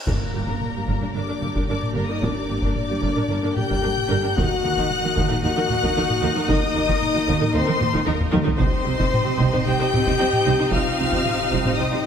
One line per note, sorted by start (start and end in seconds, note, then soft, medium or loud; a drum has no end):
0.07 0.13 G1 medium
0.07 0.14 G2 medium
0.07 1.11 A#3 medium
0.07 4.33 A#3 medium
0.07 0.13 D4 medium
0.07 4.33 G4 medium
0.07 0.13 A#4 medium
0.07 1.11 A#4 medium
0.07 4.34 A#4 medium
0.07 4.34 D5 medium
0.07 1.11 A#5 medium
0.07 taiko medium
0.07 impact medium
0.34 0.40 G1 medium
0.34 0.41 G2 soft
0.34 0.39 A#3 soft
0.34 0.39 G4 soft
0.48 0.54 G2 medium
0.48 0.53 D4 medium
0.48 0.54 A#4 medium
0.48 taiko medium
0.61 taiko mid medium
0.75 0.81 G2 medium
0.75 0.81 A#3 soft
0.75 0.81 G4 soft
0.87 0.93 G1 medium
0.87 0.94 G2 medium
0.87 0.93 D4 medium
0.87 0.93 A#4 medium
0.87 taiko medium
1.01 1.08 G2 soft
1.01 1.07 D4 medium
1.01 1.07 A#4 soft
1.01 taiko mid soft
1.14 1.21 G1 medium
1.14 1.22 G2 medium
1.14 1.21 D4 medium
1.14 1.68 D4 medium
1.14 1.20 A#4 medium
1.14 1.68 D5 medium
1.14 1.67 D6 medium
1.28 1.35 G2 soft
1.28 1.34 D4 medium
1.28 1.33 A#4 soft
1.41 1.47 G1 soft
1.41 1.48 G2 soft
1.41 1.47 A#3 medium
1.41 1.47 G4 soft
1.41 taiko mid medium
1.55 1.61 G2 medium
1.55 1.61 D4 medium
1.55 1.61 A#4 medium
1.55 taiko medium
1.68 1.74 G1 soft
1.68 1.74 G2 medium
1.68 1.95 D4 medium
1.68 1.75 D4 medium
1.68 1.75 A#4 medium
1.68 1.95 D5 medium
1.68 1.95 D6 medium
1.83 taiko mid soft
1.95 2.01 G1 medium
1.95 2.01 G2 medium
1.95 2.09 A#3 medium
1.95 2.01 D4 medium
1.95 2.09 A#4 medium
1.95 2.01 A#4 medium
1.95 2.08 A#5 medium
2.07 2.14 G2 soft
2.07 2.15 D4 medium
2.07 2.23 D#4 medium
2.07 2.15 A#4 soft
2.07 2.23 D#5 medium
2.07 2.22 D#6 medium
2.21 2.28 G1 medium
2.21 2.28 G2 medium
2.21 2.28 D4 medium
2.21 2.75 D4 medium
2.21 2.28 A#4 medium
2.21 2.73 D5 medium
2.21 2.74 D6 medium
2.21 taiko medium
2.49 2.54 G1 medium
2.49 2.55 G2 medium
2.49 2.54 A#3 soft
2.49 2.55 G4 soft
2.62 2.68 G2 medium
2.62 2.69 D4 medium
2.62 2.69 A#4 medium
2.62 taiko medium
2.74 3.55 D4 medium
2.74 3.54 D5 medium
2.74 3.55 D6 medium
2.74 taiko mid medium
2.89 2.95 G2 medium
2.89 2.95 A#3 soft
2.89 2.95 G4 soft
3.02 3.08 G1 medium
3.02 3.09 G2 medium
3.02 3.08 D4 medium
3.02 3.07 A#4 medium
3.02 taiko medium
3.16 3.22 G2 medium
3.16 3.21 D4 medium
3.16 3.22 A#4 medium
3.16 taiko mid soft
3.29 3.35 G1 medium
3.29 3.36 G2 medium
3.29 3.35 D4 medium
3.29 3.35 A#4 medium
3.43 3.50 G2 medium
3.43 3.49 D4 medium
3.43 3.49 A#4 medium
3.55 3.63 G1 medium
3.55 3.63 G2 medium
3.55 3.62 A#3 medium
3.55 3.62 G4 medium
3.55 4.36 G4 medium
3.55 4.34 G5 medium
3.55 4.36 G6 loud
3.55 taiko mid medium
3.68 3.76 G2 medium
3.68 3.74 D4 medium
3.68 3.75 A#4 medium
3.68 taiko medium
3.83 3.90 G1 medium
3.83 3.90 G2 medium
3.83 3.88 D4 medium
3.83 3.88 A#4 medium
3.98 taiko mid soft
4.09 4.16 G1 medium
4.09 4.16 G2 medium
4.09 4.15 D4 medium
4.09 4.15 A#4 medium
4.23 4.30 G2 medium
4.23 4.29 D4 medium
4.23 4.28 A#4 medium
4.36 4.43 D#2 medium
4.36 4.43 D#3 medium
4.36 8.57 A#3 medium
4.36 4.42 D#4 medium
4.36 8.59 D#4 loud
4.36 5.42 F#4 loud
4.36 4.42 A#4 medium
4.36 8.57 A#4 medium
4.36 8.60 D#5 medium
4.36 5.40 F#5 loud
4.36 5.42 F#6 loud
4.36 taiko loud
4.63 4.69 D#2 medium
4.63 4.70 D#3 medium
4.63 4.68 A#3 medium
4.63 4.68 F#4 medium
4.76 4.84 D#3 medium
4.76 4.81 D#4 medium
4.76 4.81 A#4 medium
4.76 taiko medium
4.91 taiko mid medium
5.02 5.09 D#3 medium
5.02 5.08 A#3 medium
5.02 5.07 F#4 medium
5.15 5.22 D#2 loud
5.15 5.22 D#3 medium
5.15 5.21 D#4 medium
5.15 5.21 A#4 medium
5.15 taiko medium
5.28 5.36 D#3 medium
5.28 5.34 D#4 medium
5.28 5.34 A#4 medium
5.28 taiko mid soft
5.43 5.49 D#2 medium
5.43 5.48 D#3 medium
5.43 5.48 D#4 medium
5.43 6.31 F#4 loud
5.43 5.48 A#4 medium
5.43 6.47 F#5 loud
5.43 6.47 F#6 loud
5.57 5.62 D#3 medium
5.57 5.62 D#4 medium
5.57 5.62 A#4 medium
5.69 5.75 D#2 medium
5.69 5.75 D#3 medium
5.69 5.75 A#3 medium
5.69 5.75 F#4 medium
5.69 taiko mid medium
5.83 5.89 D#3 medium
5.83 5.88 D#4 medium
5.83 5.88 A#4 medium
5.83 taiko medium
5.97 6.02 D#2 medium
5.97 6.02 D#3 medium
5.97 6.02 D#4 medium
5.97 6.03 A#4 medium
6.10 taiko mid soft
6.22 6.28 D#2 loud
6.22 6.28 D#3 medium
6.22 6.28 D#4 medium
6.22 6.27 A#4 medium
6.36 6.41 D#3 medium
6.36 6.41 D#4 medium
6.36 6.42 A#4 medium
6.48 6.54 D#2 medium
6.48 6.55 D#3 medium
6.48 7.52 D#4 loud
6.48 6.54 D#4 medium
6.48 6.54 A#4 medium
6.48 7.53 D#5 loud
6.48 7.55 D#6 loud
6.48 taiko loud
6.75 6.81 D#2 medium
6.75 6.80 D#3 medium
6.75 6.81 A#3 medium
6.75 6.81 F#4 medium
6.88 6.93 D#3 loud
6.88 6.94 D#4 medium
6.88 6.94 A#4 loud
6.88 taiko medium
7.02 taiko mid medium
7.13 7.21 D#3 medium
7.13 7.19 A#3 medium
7.13 7.19 F#4 medium
7.27 7.34 D#2 loud
7.27 7.33 D#3 medium
7.27 7.33 D#4 medium
7.27 7.32 A#4 medium
7.27 taiko medium
7.40 7.47 D#3 medium
7.40 7.45 D#4 medium
7.40 7.45 A#4 medium
7.40 taiko mid medium
7.53 7.59 D#2 medium
7.53 7.60 D#3 loud
7.53 8.08 C4 loud
7.53 7.59 D#4 medium
7.53 7.59 A#4 medium
7.53 8.08 C5 loud
7.53 8.07 C6 loud
7.66 7.74 D#3 medium
7.66 7.72 D#4 medium
7.66 7.72 A#4 medium
7.79 7.87 D#2 medium
7.79 7.87 D#3 medium
7.79 7.85 A#3 medium
7.79 7.85 F#4 medium
7.79 taiko mid medium
7.92 7.99 D#3 loud
7.92 7.98 D#4 medium
7.92 7.98 A#4 loud
7.92 taiko medium
8.05 8.13 D#2 medium
8.05 8.13 D#3 medium
8.05 8.34 A#3 medium
8.05 8.12 D#4 medium
8.05 8.11 A#4 medium
8.05 8.34 A#4 medium
8.05 8.33 A#5 medium
8.05 taiko low-mid medium
8.20 taiko low-mid medium
8.31 8.39 D#2 loud
8.31 8.39 D#3 loud
8.31 8.38 D#4 loud
8.31 8.37 A#4 loud
8.31 taiko high loud
8.44 8.52 D#3 medium
8.44 8.50 D#4 medium
8.44 8.50 A#4 medium
8.44 taiko low loud
8.57 8.65 C2 medium
8.57 8.65 C3 loud
8.57 9.62 C4 loud
8.57 12.06 C4 loud
8.57 8.63 D#4 medium
8.57 12.06 D#4 loud
8.57 12.06 G4 loud
8.57 8.63 C5 medium
8.57 9.63 C5 loud
8.57 12.06 D#5 loud
8.57 9.62 C6 loud
8.57 taiko loud
8.84 8.92 C2 medium
8.84 8.91 C3 medium
8.84 8.90 C4 medium
8.84 8.90 G4 medium
8.97 9.05 C3 loud
8.97 9.03 D#4 loud
8.97 9.03 C5 medium
8.97 taiko medium
9.14 taiko mid medium
9.24 9.32 C3 medium
9.24 9.30 C4 medium
9.24 9.30 G4 medium
9.38 9.45 C2 loud
9.38 9.46 C3 medium
9.38 9.44 D#4 medium
9.38 9.44 C5 medium
9.38 taiko medium
9.53 9.60 C3 medium
9.53 9.58 D#4 medium
9.53 9.59 C5 medium
9.53 taiko mid medium
9.65 9.73 C2 medium
9.65 9.73 C3 medium
9.65 9.72 D#4 medium
9.65 10.73 G4 loud
9.65 9.72 C5 loud
9.65 10.74 G5 loud
9.65 10.72 G6 loud
9.80 9.86 C3 medium
9.80 9.86 D#4 medium
9.80 9.85 C5 medium
9.93 9.99 C2 medium
9.93 10.00 C3 medium
9.93 9.99 C4 medium
9.93 9.99 G4 medium
9.93 taiko mid medium
10.05 10.12 C3 loud
10.05 10.12 D#4 loud
10.05 10.11 C5 medium
10.05 taiko medium
10.19 10.26 C2 medium
10.19 10.26 C3 medium
10.19 10.24 D#4 medium
10.19 10.25 C5 medium
10.33 taiko mid medium
10.46 10.52 C2 loud
10.46 10.53 C3 medium
10.46 10.51 D#4 medium
10.46 10.51 C5 medium
10.59 10.66 C3 medium
10.59 10.65 D#4 medium
10.59 10.65 C5 medium
10.71 10.79 C2 medium
10.71 10.79 C3 loud
10.71 10.79 D#4 medium
10.71 11.77 F4 loud
10.71 10.79 C5 medium
10.71 11.77 F5 loud
10.71 11.76 F6 loud
10.71 taiko loud
10.99 11.05 C2 medium
10.99 11.06 C3 medium
10.99 11.05 C4 medium
10.99 11.05 G4 medium
11.12 11.19 C3 medium
11.12 11.19 D#4 medium
11.12 11.18 C5 medium
11.12 taiko medium
11.26 taiko mid medium
11.39 11.46 C3 medium
11.39 11.45 C4 medium
11.39 11.44 G4 medium
11.53 11.58 C2 loud
11.53 11.59 C3 medium
11.53 11.58 D#4 medium
11.53 11.58 C5 medium
11.53 taiko medium
11.65 11.72 C3 medium
11.65 11.72 D#4 medium
11.65 11.71 C5 medium
11.65 taiko mid medium
11.77 11.85 C2 medium
11.77 11.85 C3 medium
11.77 12.06 D#4 medium
11.77 11.84 D#4 medium
11.77 11.84 C5 medium
11.77 12.06 D#5 medium
11.77 12.06 D#6 loud
11.92 11.98 C3 medium
11.92 11.98 D#4 medium
11.92 11.98 C5 medium